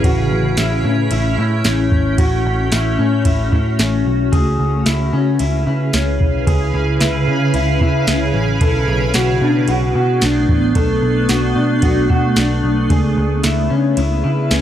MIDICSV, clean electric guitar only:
0, 0, Header, 1, 2, 480
1, 0, Start_track
1, 0, Tempo, 535714
1, 39, Time_signature, 4, 2, 24, 8
1, 13094, End_track
2, 0, Start_track
2, 0, Title_t, "Clean electric guitar"
2, 0, Program_c, 0, 27
2, 40, Note_on_c, 0, 66, 95
2, 516, Note_off_c, 0, 66, 0
2, 520, Note_on_c, 0, 64, 80
2, 759, Note_off_c, 0, 64, 0
2, 760, Note_on_c, 0, 61, 83
2, 999, Note_off_c, 0, 61, 0
2, 999, Note_on_c, 0, 64, 86
2, 1228, Note_off_c, 0, 64, 0
2, 1238, Note_on_c, 0, 64, 86
2, 1479, Note_off_c, 0, 64, 0
2, 1479, Note_on_c, 0, 61, 73
2, 1956, Note_on_c, 0, 66, 89
2, 1959, Note_off_c, 0, 61, 0
2, 2435, Note_off_c, 0, 66, 0
2, 2439, Note_on_c, 0, 64, 85
2, 2674, Note_on_c, 0, 61, 72
2, 2679, Note_off_c, 0, 64, 0
2, 2915, Note_on_c, 0, 64, 84
2, 2916, Note_off_c, 0, 61, 0
2, 3145, Note_off_c, 0, 64, 0
2, 3156, Note_on_c, 0, 64, 88
2, 3396, Note_on_c, 0, 61, 84
2, 3397, Note_off_c, 0, 64, 0
2, 3874, Note_on_c, 0, 68, 86
2, 3877, Note_off_c, 0, 61, 0
2, 4352, Note_off_c, 0, 68, 0
2, 4355, Note_on_c, 0, 64, 89
2, 4597, Note_off_c, 0, 64, 0
2, 4598, Note_on_c, 0, 61, 87
2, 4837, Note_on_c, 0, 64, 88
2, 4838, Note_off_c, 0, 61, 0
2, 5066, Note_off_c, 0, 64, 0
2, 5077, Note_on_c, 0, 64, 79
2, 5318, Note_off_c, 0, 64, 0
2, 5318, Note_on_c, 0, 61, 72
2, 5796, Note_on_c, 0, 68, 87
2, 5798, Note_off_c, 0, 61, 0
2, 6272, Note_off_c, 0, 68, 0
2, 6276, Note_on_c, 0, 64, 90
2, 6517, Note_off_c, 0, 64, 0
2, 6517, Note_on_c, 0, 61, 80
2, 6756, Note_on_c, 0, 64, 86
2, 6758, Note_off_c, 0, 61, 0
2, 6991, Note_off_c, 0, 64, 0
2, 7001, Note_on_c, 0, 64, 85
2, 7239, Note_on_c, 0, 61, 77
2, 7240, Note_off_c, 0, 64, 0
2, 7718, Note_on_c, 0, 69, 90
2, 7719, Note_off_c, 0, 61, 0
2, 8195, Note_off_c, 0, 69, 0
2, 8198, Note_on_c, 0, 66, 85
2, 8439, Note_off_c, 0, 66, 0
2, 8440, Note_on_c, 0, 62, 84
2, 8676, Note_on_c, 0, 66, 95
2, 8679, Note_off_c, 0, 62, 0
2, 8908, Note_off_c, 0, 66, 0
2, 8918, Note_on_c, 0, 66, 85
2, 9157, Note_on_c, 0, 62, 80
2, 9159, Note_off_c, 0, 66, 0
2, 9638, Note_off_c, 0, 62, 0
2, 9638, Note_on_c, 0, 69, 98
2, 10113, Note_off_c, 0, 69, 0
2, 10117, Note_on_c, 0, 66, 83
2, 10356, Note_on_c, 0, 62, 76
2, 10358, Note_off_c, 0, 66, 0
2, 10597, Note_off_c, 0, 62, 0
2, 10599, Note_on_c, 0, 66, 94
2, 10829, Note_off_c, 0, 66, 0
2, 10840, Note_on_c, 0, 66, 89
2, 11079, Note_off_c, 0, 66, 0
2, 11081, Note_on_c, 0, 62, 81
2, 11560, Note_off_c, 0, 62, 0
2, 11560, Note_on_c, 0, 68, 90
2, 12033, Note_off_c, 0, 68, 0
2, 12037, Note_on_c, 0, 64, 79
2, 12277, Note_on_c, 0, 61, 86
2, 12278, Note_off_c, 0, 64, 0
2, 12518, Note_off_c, 0, 61, 0
2, 12519, Note_on_c, 0, 64, 85
2, 12747, Note_off_c, 0, 64, 0
2, 12758, Note_on_c, 0, 64, 89
2, 12998, Note_off_c, 0, 64, 0
2, 12999, Note_on_c, 0, 61, 88
2, 13094, Note_off_c, 0, 61, 0
2, 13094, End_track
0, 0, End_of_file